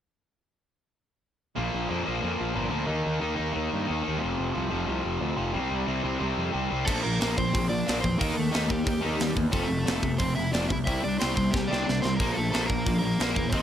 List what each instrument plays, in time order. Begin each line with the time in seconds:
1.56 picked electric bass A#1, distorted electric guitar A#2 F3 A#3
1.74 picked electric bass A#1
1.89 picked electric bass F2, distorted electric guitar A#2 F3 A#3
2.06 picked electric bass A#1, distorted electric guitar A#2 F3 A#3
2.21 picked electric bass F2, distorted electric guitar A#2 F3 A#3
2.41 picked electric bass A#1
2.54 picked electric bass G1, distorted electric guitar A#2 F3 A#3
2.70 picked electric bass D2, distorted electric guitar A#2 F3 A#3
2.86 picked electric bass D#2, distorted electric guitar D#3 A#3 D#4
3.07 picked electric bass D#2
3.20 picked electric bass D#2, distorted electric guitar D#3 A#3 D#4
3.35 distorted electric guitar D#3 A#3 D#4
3.39 picked electric bass D#2
3.52 picked electric bass D#2, distorted electric guitar D#3 A#3 D#4
3.73 picked electric bass G2
3.86 picked electric bass D#2, distorted electric guitar D#3 A#3 D#4
4.03 distorted electric guitar D#3 A#3 D#4
4.08 picked electric bass D#2
4.19 distorted electric guitar F2 C3 F3
4.24 picked electric bass F1
4.39 picked electric bass F1
4.55 picked electric bass C2, distorted electric guitar F2 C3 F3
4.70 picked electric bass F1, distorted electric guitar F2 C3 F3
4.86 picked electric bass C2, distorted electric guitar F2 C3 F3
5.05 picked electric bass F1
5.21 picked electric bass D2, distorted electric guitar F2 C3 F3
5.37 picked electric bass F1, distorted electric guitar F2 C3 F3
5.53 picked electric bass C2, distorted electric guitar C3 G3 C4
5.71 picked electric bass C2
5.87 picked electric bass C2, distorted electric guitar C3 G3 C4
6.03 picked electric bass C2, distorted electric guitar C3 G3 C4
6.19 picked electric bass C2, distorted electric guitar C3 G3 C4
6.37 picked electric bass F2
6.52 picked electric bass C2, distorted electric guitar C3 G3 C4
6.70 picked electric bass C2, distorted electric guitar C3 G3 C4
6.86 picked electric bass A#1, distorted electric guitar A#2 F3 A#3, overdriven electric guitar A3 A4, kick, crash
7.03 picked electric bass A#1, distorted electric guitar A#2 F3, overdriven electric guitar A#3 A#4
7.20 picked electric bass A#1, distorted electric guitar A#2 F3 A#3, snare, open hi-hat
7.37 picked electric bass A#1, distorted electric guitar A#2 F3, overdriven electric guitar C4 C5, kick
7.54 picked electric bass A#1, distorted electric guitar A#2 F3, kick, open hi-hat
7.69 distorted electric guitar A#2 F3, overdriven electric guitar D4 D5
7.86 picked electric bass A#1, distorted electric guitar A#2 F3 A#3, snare, open hi-hat
8.01 picked electric bass E2, distorted electric guitar A#2 F3, overdriven electric guitar C4 C5, kick
8.18 picked electric bass D#2, distorted electric guitar D#3 A#3 D#4, overdriven electric guitar A#3 A#4, kick, open hi-hat
8.34 distorted electric guitar D#3 A#3, overdriven electric guitar A4
8.39 picked electric bass D#2, overdriven electric guitar A3
8.51 distorted electric guitar D#3 A#3 D#4, snare, open hi-hat
8.55 picked electric bass D#2
8.69 picked electric bass D#2, distorted electric guitar D#3 A#3, overdriven electric guitar G3 G4, kick
8.84 picked electric bass D#2, distorted electric guitar D#3 A#3, kick, open hi-hat
9.01 picked electric bass D#2, distorted electric guitar D#3 A#3 D#4
9.17 picked electric bass D#2, distorted electric guitar D#3 A#3, snare, open hi-hat
9.35 picked electric bass E2, distorted electric guitar D#3 A#3, kick
9.51 picked electric bass F1, distorted electric guitar F2 C3 F3, overdriven electric guitar A4, kick, open hi-hat
9.56 overdriven electric guitar A3
9.68 picked electric bass F1, distorted electric guitar F2 C3
9.86 picked electric bass F1, distorted electric guitar F2 C3 F3, snare, open hi-hat
10.03 picked electric bass F1, distorted electric guitar F2 C3, kick
10.18 picked electric bass F1, distorted electric guitar F2 C3, overdriven electric guitar C4 C5, kick, open hi-hat
10.35 distorted electric guitar F2 C3, overdriven electric guitar E4 E5
10.53 picked electric bass F1, distorted electric guitar F2 C3 F3, overdriven electric guitar D4 D5, snare, open hi-hat
10.69 picked electric bass C2, distorted electric guitar F2 C3, overdriven electric guitar E4 E5, kick
10.85 picked electric bass C2, distorted electric guitar C3 G3 C4, overdriven electric guitar E4 E5, kick, open hi-hat
11.03 picked electric bass C2, distorted electric guitar C3 G3, overdriven electric guitar D5
11.08 overdriven electric guitar D4
11.19 picked electric bass C2, distorted electric guitar C3 G3 C4, overdriven electric guitar C4 C5, snare, open hi-hat
11.35 picked electric bass C2, distorted electric guitar C3 G3, overdriven electric guitar C4 C5, kick
11.51 picked electric bass C2, distorted electric guitar C3 G3, overdriven electric guitar G3 G4, kick
11.55 snare
11.68 distorted electric guitar C3 G3 C4, overdriven electric guitar D5
11.72 picked electric bass C2, overdriven electric guitar D4, snare
11.86 picked electric bass C2, distorted electric guitar C3 G3, snare
12.01 picked electric bass C2, distorted electric guitar C3 G3, overdriven electric guitar C4 C5, snare
12.16 distorted electric guitar A#2 F3 A#3, overdriven electric guitar A#4, kick
12.20 picked electric bass A#1, overdriven electric guitar A#3, open hi-hat
12.33 distorted electric guitar A#2 F3, overdriven electric guitar A3 A4
12.38 picked electric bass A#1
12.51 distorted electric guitar A#2 F3 A#3, overdriven electric guitar A3 A4, open hi-hat
12.55 picked electric bass A#1, snare
12.66 distorted electric guitar A#2 F3, overdriven electric guitar A#3 A#4, kick
12.71 picked electric bass A#1
12.86 picked electric bass A#1, distorted electric guitar A#2 F3, kick, open hi-hat
12.99 distorted electric guitar A#2 F3, overdriven electric guitar A#4
13.03 overdriven electric guitar A#3
13.20 picked electric bass A#1, distorted electric guitar A#2 F3 A#3, snare, open hi-hat
13.30 overdriven electric guitar A#4
13.35 picked electric bass E2, distorted electric guitar A#2 F3, overdriven electric guitar A#3, kick
13.49 overdriven electric guitar C4 C5, kick, open hi-hat
13.53 picked electric bass D#2, distorted electric guitar D#3 A#3 D#4